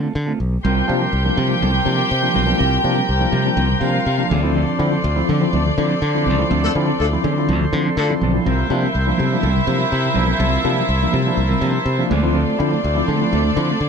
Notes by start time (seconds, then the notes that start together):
0.02 A3 C4 F4 A4
0.15 D3, muted clean electric guitar stroke
0.26 A3 C4 F4 A4
0.40 B1
0.53 muted clean electric guitar stroke
0.63 C2 C3 G3 C4 F4 G4 A#4 C5 G5 C6
0.88 C3 F3 A#3 D4, muted clean electric guitar stroke
1.00 G3 A#3 C4 D4 F4 A#4
1.13 C2
1.24 F3 A#3 D4, muted clean electric guitar stroke
1.37 C3 G3 C4 F4 A#4
1.48 F3 A#3 D4, muted clean electric guitar stroke
1.61 C2 G3 A#3 C4 D4 F4 A#4
1.74 C3, muted clean electric guitar stroke
1.85 C3 F3 A#3 D4, muted clean electric guitar stroke
1.98 G3 C4 F4 A#4
2.11 C3, muted clean electric guitar stroke
2.22 F3 A#3 D4, muted clean electric guitar stroke
2.34 B1 C3 G3 C4 F4 A#4
2.46 F3 G3 A#3 C4 D4 F4 A#4
2.58 C2 C3 G3 C4 F4 A#4 A#5
2.83 C3 F3 A#3 D4, muted clean electric guitar stroke
2.95 G3 A#3 C4 D4 F4 A#4
3.09 C2, muted clean electric guitar stroke
3.20 F3 A#3 D4, muted clean electric guitar stroke
3.32 C3 G3 C4 F4 A#4
3.45 F3 A#3 D4, muted clean electric guitar stroke
3.57 C2 G3 A#3 C4 D4 F4 A#4
3.70 C3, muted clean electric guitar stroke
3.81 C3 F3 A#3 D4 F4 F5, muted clean electric guitar stroke
3.93 G3 C4 F4 A#4
4.06 C3
4.18 F3 A#3 D4, muted clean electric guitar stroke
4.29 D2 D3 F3 C4 D4 A4 D5 C6
4.43 F3 C4 D4 E4 A4
4.55 D3 F3 C4 D4 A4
4.79 D3 F3 C4 E4, muted clean electric guitar stroke
4.91 F3 C4 D4 E4 A4
5.04 D2, muted clean electric guitar stroke
5.16 F3 C4 E4, muted clean electric guitar stroke
5.28 D3 F3 C4 D4 A4
5.41 F3 C4 E4, muted clean electric guitar stroke
5.52 D2 F3 C4 D4 E4
5.56 A4
5.66 D3, muted clean electric guitar stroke
5.78 D3 F3 C4 E4, muted clean electric guitar stroke
5.89 F3 C4 D4 A4
6.02 D3, muted clean electric guitar stroke
6.14 F3 C4 E4, muted clean electric guitar stroke
6.26 C#2 D3 F3 C4 D4 A4
6.38 F3 C4 D4 E4 A4
6.50 D2 D3 F3 C4 D4 A4
6.63 A3 D4 F4 A4
6.75 D3 F3 C4 E4
6.87 F3 C4 D4 E4 A4
6.99 D2 A3 D4 F4 A4, muted clean electric guitar stroke
7.12 F3 C4 E4, muted clean electric guitar stroke
7.24 D3 F3 C4 D4 A4
7.37 F3 C4 E4, muted clean electric guitar stroke
7.48 D2 F3 C4 D4 E4 A4
7.61 D3, muted clean electric guitar stroke
7.73 D3 F3 C4 E4, muted clean electric guitar stroke
7.86 F3 C4 D4 A4
7.97 D3 A3 D4 F4 A4, muted clean electric guitar stroke
8.10 F3 C4 E4, muted clean electric guitar stroke
8.21 B1 D3 F3 C4 D4 A4
8.33 F3 C4 D4 E4 A4
8.45 C2 C3 G3 C4 E4 F4 A#4 E5 G5
8.69 C3 F3 A#3 D4, muted clean electric guitar stroke
8.82 G3 A#3 C4 D4 F4 A#4
8.94 C2, muted clean electric guitar stroke
9.07 F3 A#3 D4, muted clean electric guitar stroke
9.17 C3 G3 C4 F4 A#4
9.29 F3 A#3 D4, muted clean electric guitar stroke
9.41 C2 G3 A#3 C4 D4 F4 A#4
9.53 C3, muted clean electric guitar stroke
9.66 C3 F3 A#3 D4, muted clean electric guitar stroke
9.78 G3 C4 F4 A#4
9.91 C3 A#3 D4, muted clean electric guitar stroke
10.03 C3, muted clean electric guitar stroke
10.14 B1 F3 G3 A#3 C4 D4 F4 A#4
10.26 G3 C4 F4 A#4
10.38 C2 C3 G3 C4 F4 A#4 A5
10.64 C3 F3 A#3 D4
10.76 G3 A#3 C4 D4 F4 A#4
10.88 C2, muted clean electric guitar stroke
11.00 F3 A#3 D4, muted clean electric guitar stroke
11.12 C3 G3 C4 F4 A#4
11.24 F3 A#3 D4, muted clean electric guitar stroke
11.37 C2 A#3 D4, muted clean electric guitar stroke
11.49 C3 G3 C4 F4 A#4
11.61 C3 F3 G3 A#3 C4 D4 F4 A#4
11.74 muted clean electric guitar stroke
11.86 C3, muted clean electric guitar stroke
11.98 F3 A#3 D4, muted clean electric guitar stroke
12.09 D2 D3 A3 C4 D4 F4 A4 D5
12.21 F3 A3 C4 E4 F4 A4
12.33 D3 A3 C4 F4 A4
12.59 D3 F3 C4 E4
12.71 A3 C4 E4 F4 A4
12.83 D2, muted clean electric guitar stroke
12.95 F3 C4 E4, muted clean electric guitar stroke
13.08 D3 A3 C4 F4 A4
13.20 F3 C4 E4, muted clean electric guitar stroke
13.33 D2 A3 C4 E4 F4 A4
13.44 D3, muted clean electric guitar stroke
13.56 D3 F3 C4 E4
13.69 A3 C4 F4 A4
13.80 D3, muted clean electric guitar stroke